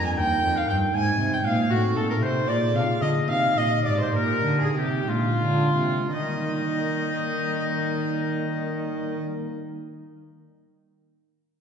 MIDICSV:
0, 0, Header, 1, 5, 480
1, 0, Start_track
1, 0, Key_signature, -3, "major"
1, 0, Tempo, 516351
1, 877, Time_signature, 6, 3, 24, 8
1, 2805, Tempo, 562852
1, 3765, Tempo, 610998
1, 4245, Tempo, 657174
1, 4725, Tempo, 718563
1, 8863, End_track
2, 0, Start_track
2, 0, Title_t, "Violin"
2, 0, Program_c, 0, 40
2, 56, Note_on_c, 0, 80, 74
2, 102, Note_off_c, 0, 80, 0
2, 180, Note_on_c, 0, 79, 98
2, 533, Note_on_c, 0, 77, 81
2, 547, Note_off_c, 0, 79, 0
2, 639, Note_off_c, 0, 77, 0
2, 645, Note_on_c, 0, 79, 78
2, 719, Note_off_c, 0, 79, 0
2, 888, Note_on_c, 0, 80, 87
2, 1230, Note_off_c, 0, 80, 0
2, 1239, Note_on_c, 0, 79, 70
2, 1285, Note_off_c, 0, 79, 0
2, 1350, Note_on_c, 0, 77, 79
2, 1587, Note_on_c, 0, 66, 88
2, 1601, Note_off_c, 0, 77, 0
2, 1831, Note_on_c, 0, 69, 78
2, 1845, Note_off_c, 0, 66, 0
2, 1949, Note_off_c, 0, 69, 0
2, 1955, Note_on_c, 0, 70, 77
2, 2002, Note_off_c, 0, 70, 0
2, 2074, Note_on_c, 0, 72, 76
2, 2306, Note_on_c, 0, 74, 81
2, 2320, Note_off_c, 0, 72, 0
2, 2562, Note_on_c, 0, 77, 81
2, 2576, Note_off_c, 0, 74, 0
2, 2801, Note_off_c, 0, 77, 0
2, 2807, Note_on_c, 0, 75, 81
2, 2875, Note_off_c, 0, 75, 0
2, 3039, Note_on_c, 0, 77, 89
2, 3282, Note_on_c, 0, 75, 81
2, 3294, Note_off_c, 0, 77, 0
2, 3510, Note_off_c, 0, 75, 0
2, 3515, Note_on_c, 0, 74, 78
2, 3637, Note_off_c, 0, 74, 0
2, 3643, Note_on_c, 0, 72, 73
2, 3762, Note_off_c, 0, 72, 0
2, 3767, Note_on_c, 0, 70, 80
2, 4116, Note_off_c, 0, 70, 0
2, 4120, Note_on_c, 0, 68, 66
2, 4242, Note_off_c, 0, 68, 0
2, 4250, Note_on_c, 0, 67, 68
2, 4486, Note_on_c, 0, 65, 82
2, 4497, Note_off_c, 0, 67, 0
2, 5199, Note_off_c, 0, 65, 0
2, 5203, Note_on_c, 0, 75, 70
2, 7254, Note_off_c, 0, 75, 0
2, 8863, End_track
3, 0, Start_track
3, 0, Title_t, "Oboe"
3, 0, Program_c, 1, 68
3, 45, Note_on_c, 1, 80, 82
3, 153, Note_off_c, 1, 80, 0
3, 158, Note_on_c, 1, 79, 100
3, 520, Note_on_c, 1, 77, 87
3, 534, Note_off_c, 1, 79, 0
3, 635, Note_on_c, 1, 79, 91
3, 649, Note_off_c, 1, 77, 0
3, 874, Note_on_c, 1, 80, 104
3, 888, Note_off_c, 1, 79, 0
3, 1237, Note_on_c, 1, 79, 92
3, 1251, Note_off_c, 1, 80, 0
3, 1346, Note_on_c, 1, 77, 99
3, 1360, Note_off_c, 1, 79, 0
3, 1578, Note_off_c, 1, 77, 0
3, 1584, Note_on_c, 1, 66, 89
3, 1692, Note_off_c, 1, 66, 0
3, 1827, Note_on_c, 1, 69, 90
3, 1942, Note_off_c, 1, 69, 0
3, 1947, Note_on_c, 1, 70, 83
3, 2068, Note_on_c, 1, 72, 91
3, 2082, Note_off_c, 1, 70, 0
3, 2308, Note_off_c, 1, 72, 0
3, 2314, Note_on_c, 1, 74, 100
3, 2424, Note_off_c, 1, 74, 0
3, 2551, Note_on_c, 1, 77, 93
3, 2803, Note_on_c, 1, 75, 94
3, 2816, Note_off_c, 1, 77, 0
3, 3040, Note_on_c, 1, 77, 107
3, 3053, Note_off_c, 1, 75, 0
3, 3280, Note_on_c, 1, 75, 94
3, 3293, Note_off_c, 1, 77, 0
3, 3517, Note_on_c, 1, 74, 96
3, 3530, Note_off_c, 1, 75, 0
3, 3641, Note_off_c, 1, 74, 0
3, 3658, Note_on_c, 1, 72, 83
3, 3768, Note_off_c, 1, 72, 0
3, 3773, Note_on_c, 1, 70, 103
3, 4119, Note_off_c, 1, 70, 0
3, 4143, Note_on_c, 1, 68, 84
3, 4253, Note_off_c, 1, 68, 0
3, 4258, Note_on_c, 1, 67, 88
3, 4495, Note_on_c, 1, 65, 85
3, 4506, Note_off_c, 1, 67, 0
3, 5198, Note_off_c, 1, 65, 0
3, 5202, Note_on_c, 1, 63, 87
3, 7252, Note_off_c, 1, 63, 0
3, 8863, End_track
4, 0, Start_track
4, 0, Title_t, "Pipe organ"
4, 0, Program_c, 2, 19
4, 0, Note_on_c, 2, 41, 61
4, 0, Note_on_c, 2, 62, 57
4, 0, Note_on_c, 2, 70, 53
4, 118, Note_on_c, 2, 58, 54
4, 127, Note_off_c, 2, 62, 0
4, 128, Note_off_c, 2, 70, 0
4, 135, Note_on_c, 2, 63, 58
4, 139, Note_off_c, 2, 41, 0
4, 147, Note_on_c, 2, 70, 55
4, 164, Note_on_c, 2, 39, 58
4, 371, Note_off_c, 2, 58, 0
4, 378, Note_off_c, 2, 39, 0
4, 408, Note_on_c, 2, 41, 57
4, 619, Note_off_c, 2, 41, 0
4, 645, Note_on_c, 2, 43, 62
4, 839, Note_off_c, 2, 63, 0
4, 844, Note_on_c, 2, 56, 61
4, 846, Note_off_c, 2, 70, 0
4, 856, Note_off_c, 2, 43, 0
4, 858, Note_on_c, 2, 63, 59
4, 870, Note_on_c, 2, 72, 57
4, 885, Note_on_c, 2, 44, 62
4, 1094, Note_off_c, 2, 44, 0
4, 1113, Note_on_c, 2, 48, 65
4, 1327, Note_off_c, 2, 48, 0
4, 1360, Note_on_c, 2, 46, 63
4, 1548, Note_off_c, 2, 63, 0
4, 1550, Note_off_c, 2, 56, 0
4, 1556, Note_on_c, 2, 60, 56
4, 1563, Note_off_c, 2, 72, 0
4, 1566, Note_on_c, 2, 63, 61
4, 1570, Note_off_c, 2, 46, 0
4, 1585, Note_on_c, 2, 69, 60
4, 1595, Note_on_c, 2, 45, 63
4, 1807, Note_off_c, 2, 45, 0
4, 1836, Note_on_c, 2, 46, 60
4, 2048, Note_off_c, 2, 46, 0
4, 2070, Note_on_c, 2, 48, 55
4, 2272, Note_on_c, 2, 58, 57
4, 2273, Note_off_c, 2, 60, 0
4, 2278, Note_off_c, 2, 63, 0
4, 2284, Note_on_c, 2, 65, 61
4, 2288, Note_off_c, 2, 48, 0
4, 2288, Note_off_c, 2, 69, 0
4, 2297, Note_on_c, 2, 68, 64
4, 2312, Note_on_c, 2, 46, 66
4, 2533, Note_off_c, 2, 46, 0
4, 2559, Note_on_c, 2, 48, 61
4, 2782, Note_off_c, 2, 48, 0
4, 2811, Note_on_c, 2, 50, 61
4, 2999, Note_off_c, 2, 58, 0
4, 3005, Note_off_c, 2, 65, 0
4, 3011, Note_off_c, 2, 68, 0
4, 3016, Note_on_c, 2, 63, 56
4, 3017, Note_off_c, 2, 50, 0
4, 3030, Note_on_c, 2, 67, 57
4, 3041, Note_on_c, 2, 48, 63
4, 3253, Note_off_c, 2, 48, 0
4, 3275, Note_on_c, 2, 46, 59
4, 3493, Note_off_c, 2, 46, 0
4, 3520, Note_on_c, 2, 44, 59
4, 3722, Note_off_c, 2, 63, 0
4, 3734, Note_off_c, 2, 67, 0
4, 3739, Note_on_c, 2, 63, 54
4, 3742, Note_off_c, 2, 44, 0
4, 3752, Note_on_c, 2, 67, 56
4, 3767, Note_on_c, 2, 46, 66
4, 3979, Note_off_c, 2, 46, 0
4, 4002, Note_on_c, 2, 50, 57
4, 4222, Note_off_c, 2, 50, 0
4, 4243, Note_on_c, 2, 48, 60
4, 4440, Note_on_c, 2, 56, 52
4, 4448, Note_off_c, 2, 63, 0
4, 4454, Note_off_c, 2, 67, 0
4, 4454, Note_on_c, 2, 62, 54
4, 4456, Note_off_c, 2, 48, 0
4, 4463, Note_on_c, 2, 65, 52
4, 4474, Note_on_c, 2, 46, 62
4, 4698, Note_off_c, 2, 46, 0
4, 4728, Note_on_c, 2, 50, 55
4, 4939, Note_off_c, 2, 50, 0
4, 4957, Note_on_c, 2, 48, 55
4, 5161, Note_off_c, 2, 56, 0
4, 5167, Note_off_c, 2, 62, 0
4, 5172, Note_off_c, 2, 65, 0
4, 5175, Note_off_c, 2, 48, 0
4, 5198, Note_on_c, 2, 51, 60
4, 5244, Note_on_c, 2, 55, 59
4, 5292, Note_on_c, 2, 58, 60
4, 5336, Note_on_c, 2, 63, 60
4, 5385, Note_on_c, 2, 70, 57
4, 7249, Note_off_c, 2, 51, 0
4, 7295, Note_off_c, 2, 55, 0
4, 7343, Note_off_c, 2, 58, 0
4, 7387, Note_off_c, 2, 63, 0
4, 7435, Note_off_c, 2, 70, 0
4, 8863, End_track
5, 0, Start_track
5, 0, Title_t, "Cello"
5, 0, Program_c, 3, 42
5, 0, Note_on_c, 3, 41, 73
5, 163, Note_on_c, 3, 39, 71
5, 177, Note_off_c, 3, 41, 0
5, 395, Note_off_c, 3, 39, 0
5, 400, Note_on_c, 3, 41, 75
5, 634, Note_off_c, 3, 41, 0
5, 638, Note_on_c, 3, 43, 70
5, 871, Note_off_c, 3, 43, 0
5, 878, Note_on_c, 3, 44, 70
5, 1105, Note_off_c, 3, 44, 0
5, 1110, Note_on_c, 3, 48, 67
5, 1338, Note_off_c, 3, 48, 0
5, 1343, Note_on_c, 3, 46, 75
5, 1580, Note_off_c, 3, 46, 0
5, 1589, Note_on_c, 3, 45, 68
5, 1664, Note_off_c, 3, 45, 0
5, 1822, Note_on_c, 3, 46, 69
5, 2057, Note_off_c, 3, 46, 0
5, 2062, Note_on_c, 3, 48, 68
5, 2299, Note_off_c, 3, 48, 0
5, 2304, Note_on_c, 3, 46, 68
5, 2547, Note_off_c, 3, 46, 0
5, 2552, Note_on_c, 3, 48, 63
5, 2626, Note_off_c, 3, 48, 0
5, 2802, Note_on_c, 3, 50, 72
5, 2870, Note_off_c, 3, 50, 0
5, 3030, Note_on_c, 3, 48, 70
5, 3264, Note_off_c, 3, 48, 0
5, 3269, Note_on_c, 3, 46, 71
5, 3337, Note_off_c, 3, 46, 0
5, 3517, Note_on_c, 3, 44, 74
5, 3757, Note_off_c, 3, 44, 0
5, 3763, Note_on_c, 3, 46, 76
5, 3990, Note_off_c, 3, 46, 0
5, 3995, Note_on_c, 3, 50, 60
5, 4234, Note_off_c, 3, 50, 0
5, 4239, Note_on_c, 3, 48, 67
5, 4467, Note_off_c, 3, 48, 0
5, 4471, Note_on_c, 3, 46, 62
5, 4716, Note_off_c, 3, 46, 0
5, 4719, Note_on_c, 3, 50, 71
5, 4949, Note_off_c, 3, 50, 0
5, 4953, Note_on_c, 3, 48, 67
5, 5190, Note_off_c, 3, 48, 0
5, 5194, Note_on_c, 3, 51, 70
5, 7245, Note_off_c, 3, 51, 0
5, 8863, End_track
0, 0, End_of_file